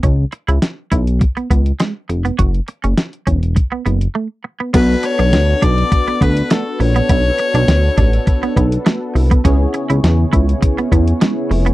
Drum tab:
CC |----------------|----------------|x---------------|----------------|
HH |x-xxx-xxxxxxx-xx|xxxxxxxxx-xx----|x-xxx-xxxxxxx-ox|x-xxx-xxxxxxx-ox|
SD |----o-------o---|----o-----------|----o-------o---|----o-------o---|
BD |o-----o-o-o-----|o-----o-o-------|o-----o-o-o-----|o-----o-o-o----o|

CC |----------------|
HH |x-xxx-xxxxxxx-ox|
SD |----o-------o---|
BD |o-----o-o-o-----|